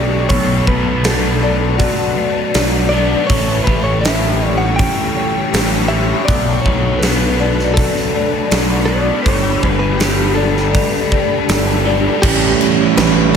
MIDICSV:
0, 0, Header, 1, 9, 480
1, 0, Start_track
1, 0, Tempo, 745342
1, 193, Time_signature, 4, 2, 24, 8
1, 8608, End_track
2, 0, Start_track
2, 0, Title_t, "Ambient pad"
2, 0, Program_c, 0, 92
2, 0, Note_on_c, 0, 69, 80
2, 0, Note_on_c, 0, 79, 72
2, 0, Note_on_c, 0, 85, 89
2, 179, Note_off_c, 0, 79, 0
2, 179, Note_off_c, 0, 85, 0
2, 180, Note_off_c, 0, 69, 0
2, 189, Note_on_c, 0, 71, 84
2, 195, Note_on_c, 0, 81, 75
2, 2097, Note_off_c, 0, 71, 0
2, 2100, Note_off_c, 0, 81, 0
2, 2127, Note_on_c, 0, 69, 77
2, 2128, Note_on_c, 0, 85, 85
2, 2129, Note_on_c, 0, 79, 72
2, 4026, Note_off_c, 0, 85, 0
2, 4027, Note_off_c, 0, 79, 0
2, 4042, Note_on_c, 0, 83, 88
2, 4045, Note_on_c, 0, 62, 72
2, 5942, Note_off_c, 0, 62, 0
2, 5970, Note_on_c, 0, 79, 72
2, 7850, Note_off_c, 0, 83, 0
2, 7854, Note_off_c, 0, 69, 0
2, 7861, Note_off_c, 0, 79, 0
2, 7876, Note_on_c, 0, 69, 75
2, 7878, Note_on_c, 0, 79, 71
2, 7880, Note_on_c, 0, 85, 92
2, 8608, Note_off_c, 0, 69, 0
2, 8608, Note_off_c, 0, 79, 0
2, 8608, Note_off_c, 0, 85, 0
2, 8608, End_track
3, 0, Start_track
3, 0, Title_t, "Clean electric guitar"
3, 0, Program_c, 1, 27
3, 0, Note_on_c, 1, 74, 76
3, 184, Note_off_c, 1, 74, 0
3, 187, Note_on_c, 1, 73, 97
3, 434, Note_off_c, 1, 73, 0
3, 436, Note_on_c, 1, 71, 84
3, 676, Note_on_c, 1, 69, 81
3, 683, Note_off_c, 1, 71, 0
3, 912, Note_off_c, 1, 69, 0
3, 920, Note_on_c, 1, 69, 73
3, 1142, Note_off_c, 1, 69, 0
3, 1148, Note_on_c, 1, 66, 82
3, 1861, Note_on_c, 1, 74, 82
3, 1896, Note_off_c, 1, 66, 0
3, 2101, Note_off_c, 1, 74, 0
3, 2103, Note_on_c, 1, 73, 94
3, 2341, Note_off_c, 1, 73, 0
3, 2344, Note_on_c, 1, 71, 92
3, 2468, Note_off_c, 1, 71, 0
3, 2471, Note_on_c, 1, 73, 96
3, 2580, Note_off_c, 1, 73, 0
3, 2582, Note_on_c, 1, 76, 88
3, 2878, Note_off_c, 1, 76, 0
3, 2878, Note_on_c, 1, 74, 88
3, 2945, Note_off_c, 1, 74, 0
3, 2947, Note_on_c, 1, 78, 87
3, 3063, Note_off_c, 1, 78, 0
3, 3066, Note_on_c, 1, 79, 112
3, 3786, Note_off_c, 1, 79, 0
3, 3789, Note_on_c, 1, 76, 92
3, 4021, Note_off_c, 1, 76, 0
3, 4024, Note_on_c, 1, 74, 107
3, 4257, Note_off_c, 1, 74, 0
3, 4260, Note_on_c, 1, 73, 81
3, 4501, Note_on_c, 1, 71, 89
3, 4518, Note_off_c, 1, 73, 0
3, 4738, Note_off_c, 1, 71, 0
3, 4745, Note_on_c, 1, 71, 79
3, 4980, Note_off_c, 1, 71, 0
3, 4982, Note_on_c, 1, 69, 94
3, 5703, Note_on_c, 1, 74, 83
3, 5733, Note_off_c, 1, 69, 0
3, 5939, Note_off_c, 1, 74, 0
3, 5942, Note_on_c, 1, 73, 84
3, 6238, Note_off_c, 1, 73, 0
3, 6238, Note_on_c, 1, 71, 84
3, 6304, Note_off_c, 1, 71, 0
3, 6306, Note_on_c, 1, 71, 79
3, 6425, Note_on_c, 1, 67, 80
3, 6436, Note_off_c, 1, 71, 0
3, 6661, Note_off_c, 1, 67, 0
3, 6664, Note_on_c, 1, 69, 73
3, 7603, Note_off_c, 1, 69, 0
3, 7870, Note_on_c, 1, 67, 93
3, 8355, Note_on_c, 1, 71, 99
3, 8366, Note_off_c, 1, 67, 0
3, 8601, Note_off_c, 1, 71, 0
3, 8608, End_track
4, 0, Start_track
4, 0, Title_t, "Twelve-string acoustic guitar"
4, 0, Program_c, 2, 25
4, 0, Note_on_c, 2, 57, 70
4, 0, Note_on_c, 2, 67, 72
4, 183, Note_off_c, 2, 57, 0
4, 185, Note_on_c, 2, 57, 60
4, 190, Note_off_c, 2, 67, 0
4, 670, Note_on_c, 2, 66, 71
4, 918, Note_on_c, 2, 62, 69
4, 1162, Note_off_c, 2, 57, 0
4, 1164, Note_on_c, 2, 57, 76
4, 1389, Note_off_c, 2, 62, 0
4, 1397, Note_on_c, 2, 62, 54
4, 1635, Note_off_c, 2, 66, 0
4, 1643, Note_on_c, 2, 66, 86
4, 1880, Note_off_c, 2, 62, 0
4, 1887, Note_on_c, 2, 62, 66
4, 2120, Note_on_c, 2, 52, 64
4, 2122, Note_off_c, 2, 66, 0
4, 2123, Note_off_c, 2, 62, 0
4, 2599, Note_on_c, 2, 67, 74
4, 2619, Note_off_c, 2, 57, 0
4, 2841, Note_on_c, 2, 61, 66
4, 3080, Note_on_c, 2, 57, 67
4, 3313, Note_off_c, 2, 61, 0
4, 3321, Note_off_c, 2, 52, 0
4, 3321, Note_on_c, 2, 61, 58
4, 3553, Note_off_c, 2, 67, 0
4, 3561, Note_on_c, 2, 67, 82
4, 3789, Note_off_c, 2, 61, 0
4, 3797, Note_on_c, 2, 61, 66
4, 4039, Note_off_c, 2, 61, 0
4, 4040, Note_off_c, 2, 57, 0
4, 4041, Note_off_c, 2, 67, 0
4, 4042, Note_on_c, 2, 57, 69
4, 4523, Note_on_c, 2, 66, 68
4, 4760, Note_on_c, 2, 62, 65
4, 4994, Note_off_c, 2, 57, 0
4, 4996, Note_on_c, 2, 57, 65
4, 5233, Note_off_c, 2, 62, 0
4, 5241, Note_on_c, 2, 62, 61
4, 5469, Note_off_c, 2, 66, 0
4, 5477, Note_on_c, 2, 66, 79
4, 5710, Note_off_c, 2, 62, 0
4, 5717, Note_on_c, 2, 62, 69
4, 5951, Note_on_c, 2, 55, 74
4, 5958, Note_off_c, 2, 62, 0
4, 5958, Note_off_c, 2, 66, 0
4, 5970, Note_off_c, 2, 57, 0
4, 6435, Note_on_c, 2, 69, 68
4, 6672, Note_on_c, 2, 62, 68
4, 6912, Note_on_c, 2, 59, 70
4, 7146, Note_off_c, 2, 62, 0
4, 7153, Note_off_c, 2, 55, 0
4, 7154, Note_on_c, 2, 62, 57
4, 7387, Note_off_c, 2, 69, 0
4, 7395, Note_on_c, 2, 69, 78
4, 7626, Note_off_c, 2, 62, 0
4, 7634, Note_on_c, 2, 62, 68
4, 7873, Note_off_c, 2, 59, 0
4, 7874, Note_off_c, 2, 62, 0
4, 7874, Note_on_c, 2, 52, 77
4, 7875, Note_off_c, 2, 69, 0
4, 8118, Note_on_c, 2, 57, 68
4, 8351, Note_on_c, 2, 61, 64
4, 8581, Note_off_c, 2, 52, 0
4, 8608, Note_off_c, 2, 57, 0
4, 8608, Note_off_c, 2, 61, 0
4, 8608, End_track
5, 0, Start_track
5, 0, Title_t, "Overdriven electric guitar"
5, 0, Program_c, 3, 29
5, 0, Note_on_c, 3, 52, 57
5, 0, Note_on_c, 3, 55, 67
5, 0, Note_on_c, 3, 61, 68
5, 185, Note_on_c, 3, 47, 72
5, 189, Note_off_c, 3, 55, 0
5, 191, Note_off_c, 3, 61, 0
5, 193, Note_off_c, 3, 52, 0
5, 429, Note_on_c, 3, 66, 74
5, 671, Note_on_c, 3, 62, 72
5, 914, Note_on_c, 3, 57, 55
5, 1140, Note_off_c, 3, 62, 0
5, 1147, Note_on_c, 3, 62, 77
5, 1386, Note_on_c, 3, 54, 59
5, 1393, Note_off_c, 3, 47, 0
5, 1629, Note_off_c, 3, 57, 0
5, 1632, Note_on_c, 3, 57, 73
5, 1635, Note_off_c, 3, 66, 0
5, 1867, Note_off_c, 3, 62, 0
5, 1875, Note_on_c, 3, 62, 71
5, 2113, Note_off_c, 3, 54, 0
5, 2117, Note_off_c, 3, 62, 0
5, 2117, Note_on_c, 3, 45, 67
5, 2361, Note_on_c, 3, 67, 71
5, 2380, Note_off_c, 3, 57, 0
5, 2594, Note_on_c, 3, 61, 66
5, 2840, Note_on_c, 3, 55, 64
5, 3069, Note_off_c, 3, 61, 0
5, 3077, Note_on_c, 3, 61, 75
5, 3320, Note_off_c, 3, 45, 0
5, 3329, Note_on_c, 3, 52, 62
5, 3555, Note_off_c, 3, 55, 0
5, 3562, Note_off_c, 3, 67, 0
5, 3563, Note_on_c, 3, 55, 72
5, 3795, Note_off_c, 3, 61, 0
5, 3802, Note_on_c, 3, 61, 71
5, 4042, Note_off_c, 3, 55, 0
5, 4042, Note_off_c, 3, 61, 0
5, 4045, Note_off_c, 3, 52, 0
5, 4049, Note_on_c, 3, 47, 77
5, 4285, Note_on_c, 3, 71, 68
5, 4524, Note_on_c, 3, 66, 71
5, 4773, Note_on_c, 3, 62, 68
5, 5003, Note_off_c, 3, 66, 0
5, 5011, Note_on_c, 3, 66, 75
5, 5245, Note_off_c, 3, 47, 0
5, 5247, Note_on_c, 3, 57, 66
5, 5478, Note_off_c, 3, 62, 0
5, 5482, Note_off_c, 3, 71, 0
5, 5486, Note_on_c, 3, 62, 70
5, 5724, Note_off_c, 3, 66, 0
5, 5731, Note_on_c, 3, 66, 73
5, 5962, Note_off_c, 3, 62, 0
5, 5964, Note_on_c, 3, 55, 73
5, 5965, Note_off_c, 3, 66, 0
5, 5983, Note_off_c, 3, 57, 0
5, 6203, Note_on_c, 3, 71, 72
5, 6442, Note_on_c, 3, 67, 63
5, 6678, Note_on_c, 3, 62, 57
5, 6903, Note_off_c, 3, 67, 0
5, 6911, Note_on_c, 3, 67, 76
5, 7152, Note_on_c, 3, 57, 67
5, 7159, Note_off_c, 3, 55, 0
5, 7381, Note_off_c, 3, 62, 0
5, 7389, Note_on_c, 3, 62, 71
5, 7398, Note_off_c, 3, 71, 0
5, 7623, Note_off_c, 3, 67, 0
5, 7631, Note_on_c, 3, 67, 73
5, 7871, Note_off_c, 3, 62, 0
5, 7872, Note_off_c, 3, 57, 0
5, 7872, Note_on_c, 3, 45, 81
5, 7873, Note_off_c, 3, 67, 0
5, 7876, Note_on_c, 3, 52, 70
5, 7881, Note_on_c, 3, 55, 85
5, 7886, Note_on_c, 3, 61, 89
5, 7886, Note_on_c, 3, 64, 82
5, 8608, Note_off_c, 3, 45, 0
5, 8608, Note_off_c, 3, 52, 0
5, 8608, Note_off_c, 3, 55, 0
5, 8608, Note_off_c, 3, 61, 0
5, 8608, Note_off_c, 3, 64, 0
5, 8608, End_track
6, 0, Start_track
6, 0, Title_t, "Distorted electric guitar"
6, 0, Program_c, 4, 30
6, 0, Note_on_c, 4, 52, 66
6, 0, Note_on_c, 4, 55, 69
6, 0, Note_on_c, 4, 61, 69
6, 0, Note_on_c, 4, 67, 77
6, 192, Note_off_c, 4, 67, 0
6, 194, Note_off_c, 4, 55, 0
6, 194, Note_off_c, 4, 61, 0
6, 195, Note_off_c, 4, 52, 0
6, 198, Note_on_c, 4, 47, 68
6, 440, Note_on_c, 4, 54, 59
6, 684, Note_on_c, 4, 62, 69
6, 925, Note_on_c, 4, 57, 62
6, 1151, Note_off_c, 4, 54, 0
6, 1158, Note_on_c, 4, 54, 64
6, 1398, Note_off_c, 4, 57, 0
6, 1399, Note_off_c, 4, 47, 0
6, 1401, Note_on_c, 4, 57, 73
6, 1644, Note_on_c, 4, 66, 74
6, 1872, Note_off_c, 4, 62, 0
6, 1880, Note_on_c, 4, 62, 72
6, 2120, Note_off_c, 4, 54, 0
6, 2120, Note_off_c, 4, 62, 0
6, 2121, Note_on_c, 4, 45, 69
6, 2122, Note_off_c, 4, 66, 0
6, 2367, Note_on_c, 4, 52, 54
6, 2607, Note_on_c, 4, 61, 67
6, 2842, Note_off_c, 4, 57, 0
6, 2845, Note_on_c, 4, 55, 66
6, 3080, Note_off_c, 4, 52, 0
6, 3087, Note_on_c, 4, 52, 66
6, 3320, Note_off_c, 4, 55, 0
6, 3322, Note_off_c, 4, 45, 0
6, 3327, Note_on_c, 4, 55, 65
6, 3566, Note_on_c, 4, 67, 73
6, 3801, Note_off_c, 4, 61, 0
6, 3809, Note_on_c, 4, 61, 72
6, 4043, Note_off_c, 4, 67, 0
6, 4044, Note_off_c, 4, 52, 0
6, 4044, Note_off_c, 4, 55, 0
6, 4045, Note_off_c, 4, 61, 0
6, 4050, Note_on_c, 4, 47, 76
6, 4290, Note_on_c, 4, 54, 65
6, 4533, Note_on_c, 4, 62, 74
6, 4773, Note_on_c, 4, 57, 65
6, 5003, Note_off_c, 4, 54, 0
6, 5010, Note_on_c, 4, 54, 70
6, 5245, Note_off_c, 4, 47, 0
6, 5247, Note_off_c, 4, 57, 0
6, 5249, Note_on_c, 4, 57, 73
6, 5485, Note_on_c, 4, 66, 84
6, 5718, Note_off_c, 4, 62, 0
6, 5726, Note_on_c, 4, 62, 68
6, 5961, Note_off_c, 4, 54, 0
6, 5962, Note_off_c, 4, 62, 0
6, 5962, Note_off_c, 4, 66, 0
6, 5964, Note_on_c, 4, 55, 63
6, 5983, Note_off_c, 4, 57, 0
6, 6206, Note_on_c, 4, 57, 61
6, 6441, Note_on_c, 4, 67, 72
6, 6678, Note_on_c, 4, 62, 68
6, 6911, Note_off_c, 4, 57, 0
6, 6918, Note_on_c, 4, 57, 58
6, 7152, Note_off_c, 4, 62, 0
6, 7159, Note_off_c, 4, 55, 0
6, 7160, Note_on_c, 4, 62, 70
6, 7397, Note_on_c, 4, 71, 81
6, 7635, Note_off_c, 4, 67, 0
6, 7642, Note_on_c, 4, 67, 69
6, 7873, Note_on_c, 4, 45, 79
6, 7875, Note_off_c, 4, 57, 0
6, 7875, Note_off_c, 4, 71, 0
6, 7876, Note_off_c, 4, 62, 0
6, 7878, Note_off_c, 4, 67, 0
6, 7881, Note_on_c, 4, 52, 94
6, 7886, Note_on_c, 4, 57, 99
6, 8106, Note_off_c, 4, 57, 0
6, 8114, Note_on_c, 4, 57, 66
6, 8119, Note_off_c, 4, 52, 0
6, 8126, Note_on_c, 4, 52, 58
6, 8344, Note_off_c, 4, 45, 0
6, 8352, Note_on_c, 4, 45, 83
6, 8353, Note_off_c, 4, 52, 0
6, 8358, Note_off_c, 4, 57, 0
6, 8361, Note_on_c, 4, 52, 89
6, 8366, Note_on_c, 4, 57, 90
6, 8591, Note_off_c, 4, 57, 0
6, 8605, Note_off_c, 4, 52, 0
6, 8608, Note_off_c, 4, 45, 0
6, 8608, End_track
7, 0, Start_track
7, 0, Title_t, "Overdriven electric guitar"
7, 0, Program_c, 5, 29
7, 188, Note_on_c, 5, 47, 90
7, 197, Note_on_c, 5, 54, 89
7, 205, Note_on_c, 5, 59, 93
7, 1861, Note_off_c, 5, 47, 0
7, 1866, Note_off_c, 5, 54, 0
7, 1870, Note_off_c, 5, 59, 0
7, 1877, Note_on_c, 5, 59, 90
7, 1883, Note_on_c, 5, 54, 69
7, 1891, Note_on_c, 5, 47, 60
7, 2104, Note_off_c, 5, 59, 0
7, 2107, Note_off_c, 5, 54, 0
7, 2111, Note_off_c, 5, 47, 0
7, 2116, Note_on_c, 5, 45, 95
7, 2123, Note_on_c, 5, 52, 95
7, 2131, Note_on_c, 5, 57, 93
7, 3785, Note_off_c, 5, 45, 0
7, 3788, Note_off_c, 5, 52, 0
7, 3789, Note_off_c, 5, 57, 0
7, 3792, Note_on_c, 5, 57, 71
7, 3804, Note_on_c, 5, 52, 74
7, 3810, Note_on_c, 5, 45, 61
7, 4028, Note_off_c, 5, 45, 0
7, 4028, Note_off_c, 5, 52, 0
7, 4031, Note_on_c, 5, 47, 85
7, 4039, Note_on_c, 5, 54, 104
7, 4045, Note_off_c, 5, 57, 0
7, 4047, Note_on_c, 5, 59, 91
7, 5700, Note_off_c, 5, 47, 0
7, 5705, Note_off_c, 5, 54, 0
7, 5707, Note_off_c, 5, 59, 0
7, 5715, Note_on_c, 5, 59, 74
7, 5725, Note_on_c, 5, 54, 65
7, 5730, Note_on_c, 5, 47, 65
7, 5942, Note_off_c, 5, 59, 0
7, 5948, Note_off_c, 5, 54, 0
7, 5950, Note_off_c, 5, 47, 0
7, 5951, Note_on_c, 5, 43, 93
7, 5959, Note_on_c, 5, 50, 98
7, 5964, Note_on_c, 5, 55, 104
7, 7617, Note_off_c, 5, 43, 0
7, 7621, Note_off_c, 5, 50, 0
7, 7624, Note_off_c, 5, 55, 0
7, 7632, Note_on_c, 5, 55, 77
7, 7640, Note_on_c, 5, 50, 69
7, 7645, Note_on_c, 5, 43, 65
7, 7859, Note_off_c, 5, 55, 0
7, 7863, Note_off_c, 5, 50, 0
7, 7865, Note_off_c, 5, 43, 0
7, 7870, Note_on_c, 5, 45, 100
7, 7873, Note_on_c, 5, 52, 101
7, 7874, Note_on_c, 5, 57, 114
7, 8102, Note_off_c, 5, 45, 0
7, 8102, Note_off_c, 5, 52, 0
7, 8105, Note_off_c, 5, 57, 0
7, 8109, Note_on_c, 5, 45, 87
7, 8109, Note_on_c, 5, 52, 85
7, 8113, Note_on_c, 5, 57, 85
7, 8339, Note_off_c, 5, 45, 0
7, 8343, Note_off_c, 5, 52, 0
7, 8345, Note_off_c, 5, 57, 0
7, 8347, Note_on_c, 5, 45, 88
7, 8351, Note_on_c, 5, 52, 99
7, 8353, Note_on_c, 5, 57, 105
7, 8578, Note_off_c, 5, 45, 0
7, 8578, Note_off_c, 5, 52, 0
7, 8585, Note_off_c, 5, 57, 0
7, 8586, Note_on_c, 5, 45, 85
7, 8586, Note_on_c, 5, 52, 93
7, 8608, Note_off_c, 5, 45, 0
7, 8608, Note_off_c, 5, 52, 0
7, 8608, End_track
8, 0, Start_track
8, 0, Title_t, "Picked electric bass"
8, 0, Program_c, 6, 34
8, 0, Note_on_c, 6, 35, 76
8, 173, Note_off_c, 6, 35, 0
8, 196, Note_on_c, 6, 35, 86
8, 383, Note_off_c, 6, 35, 0
8, 433, Note_on_c, 6, 35, 99
8, 1186, Note_off_c, 6, 35, 0
8, 1642, Note_on_c, 6, 35, 84
8, 2016, Note_off_c, 6, 35, 0
8, 2124, Note_on_c, 6, 33, 90
8, 2310, Note_off_c, 6, 33, 0
8, 2363, Note_on_c, 6, 33, 103
8, 3113, Note_off_c, 6, 33, 0
8, 3565, Note_on_c, 6, 33, 90
8, 3939, Note_off_c, 6, 33, 0
8, 4048, Note_on_c, 6, 35, 87
8, 4233, Note_off_c, 6, 35, 0
8, 4287, Note_on_c, 6, 35, 105
8, 5034, Note_off_c, 6, 35, 0
8, 5484, Note_on_c, 6, 35, 79
8, 5857, Note_off_c, 6, 35, 0
8, 5964, Note_on_c, 6, 31, 84
8, 6149, Note_off_c, 6, 31, 0
8, 6205, Note_on_c, 6, 31, 99
8, 6951, Note_off_c, 6, 31, 0
8, 7399, Note_on_c, 6, 31, 85
8, 7772, Note_off_c, 6, 31, 0
8, 7879, Note_on_c, 6, 33, 102
8, 8065, Note_off_c, 6, 33, 0
8, 8357, Note_on_c, 6, 33, 113
8, 8608, Note_off_c, 6, 33, 0
8, 8608, End_track
9, 0, Start_track
9, 0, Title_t, "Drums"
9, 189, Note_on_c, 9, 46, 49
9, 193, Note_on_c, 9, 36, 97
9, 254, Note_off_c, 9, 46, 0
9, 258, Note_off_c, 9, 36, 0
9, 434, Note_on_c, 9, 36, 81
9, 498, Note_off_c, 9, 36, 0
9, 671, Note_on_c, 9, 46, 52
9, 676, Note_on_c, 9, 38, 115
9, 736, Note_off_c, 9, 46, 0
9, 740, Note_off_c, 9, 38, 0
9, 1156, Note_on_c, 9, 46, 54
9, 1158, Note_on_c, 9, 36, 102
9, 1220, Note_off_c, 9, 46, 0
9, 1222, Note_off_c, 9, 36, 0
9, 1638, Note_on_c, 9, 46, 67
9, 1643, Note_on_c, 9, 38, 121
9, 1702, Note_off_c, 9, 46, 0
9, 1707, Note_off_c, 9, 38, 0
9, 2123, Note_on_c, 9, 46, 56
9, 2124, Note_on_c, 9, 36, 108
9, 2187, Note_off_c, 9, 46, 0
9, 2188, Note_off_c, 9, 36, 0
9, 2365, Note_on_c, 9, 36, 78
9, 2429, Note_off_c, 9, 36, 0
9, 2607, Note_on_c, 9, 46, 58
9, 2612, Note_on_c, 9, 38, 117
9, 2672, Note_off_c, 9, 46, 0
9, 2676, Note_off_c, 9, 38, 0
9, 3085, Note_on_c, 9, 46, 54
9, 3087, Note_on_c, 9, 36, 102
9, 3150, Note_off_c, 9, 46, 0
9, 3151, Note_off_c, 9, 36, 0
9, 3567, Note_on_c, 9, 46, 63
9, 3572, Note_on_c, 9, 38, 118
9, 3632, Note_off_c, 9, 46, 0
9, 3636, Note_off_c, 9, 38, 0
9, 4046, Note_on_c, 9, 46, 44
9, 4047, Note_on_c, 9, 36, 99
9, 4110, Note_off_c, 9, 46, 0
9, 4111, Note_off_c, 9, 36, 0
9, 4287, Note_on_c, 9, 36, 74
9, 4351, Note_off_c, 9, 36, 0
9, 4524, Note_on_c, 9, 46, 56
9, 4529, Note_on_c, 9, 38, 103
9, 4589, Note_off_c, 9, 46, 0
9, 4593, Note_off_c, 9, 38, 0
9, 4891, Note_on_c, 9, 38, 33
9, 4955, Note_off_c, 9, 38, 0
9, 5005, Note_on_c, 9, 36, 117
9, 5005, Note_on_c, 9, 46, 56
9, 5069, Note_off_c, 9, 36, 0
9, 5069, Note_off_c, 9, 46, 0
9, 5129, Note_on_c, 9, 38, 30
9, 5193, Note_off_c, 9, 38, 0
9, 5483, Note_on_c, 9, 46, 63
9, 5488, Note_on_c, 9, 38, 124
9, 5547, Note_off_c, 9, 46, 0
9, 5552, Note_off_c, 9, 38, 0
9, 5963, Note_on_c, 9, 36, 102
9, 5963, Note_on_c, 9, 46, 53
9, 6027, Note_off_c, 9, 36, 0
9, 6028, Note_off_c, 9, 46, 0
9, 6202, Note_on_c, 9, 36, 69
9, 6267, Note_off_c, 9, 36, 0
9, 6441, Note_on_c, 9, 46, 59
9, 6445, Note_on_c, 9, 38, 113
9, 6505, Note_off_c, 9, 46, 0
9, 6510, Note_off_c, 9, 38, 0
9, 6807, Note_on_c, 9, 38, 32
9, 6871, Note_off_c, 9, 38, 0
9, 6920, Note_on_c, 9, 46, 55
9, 6921, Note_on_c, 9, 36, 101
9, 6985, Note_off_c, 9, 36, 0
9, 6985, Note_off_c, 9, 46, 0
9, 7161, Note_on_c, 9, 36, 80
9, 7225, Note_off_c, 9, 36, 0
9, 7399, Note_on_c, 9, 46, 63
9, 7403, Note_on_c, 9, 38, 125
9, 7463, Note_off_c, 9, 46, 0
9, 7468, Note_off_c, 9, 38, 0
9, 7878, Note_on_c, 9, 36, 113
9, 7878, Note_on_c, 9, 49, 105
9, 7878, Note_on_c, 9, 57, 68
9, 7942, Note_off_c, 9, 36, 0
9, 7942, Note_off_c, 9, 49, 0
9, 7942, Note_off_c, 9, 57, 0
9, 8119, Note_on_c, 9, 57, 60
9, 8183, Note_off_c, 9, 57, 0
9, 8355, Note_on_c, 9, 57, 90
9, 8360, Note_on_c, 9, 38, 113
9, 8420, Note_off_c, 9, 57, 0
9, 8424, Note_off_c, 9, 38, 0
9, 8608, End_track
0, 0, End_of_file